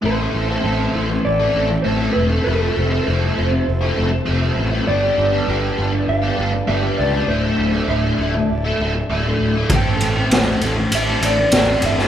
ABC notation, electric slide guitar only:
X:1
M:4/4
L:1/8
Q:1/4=99
K:Am
V:1 name="Electric slide guitar"
c4 d2 c B | A2 c4- c z | d4 f2 e d | c2 e4- e z |
g4 e d2 e |]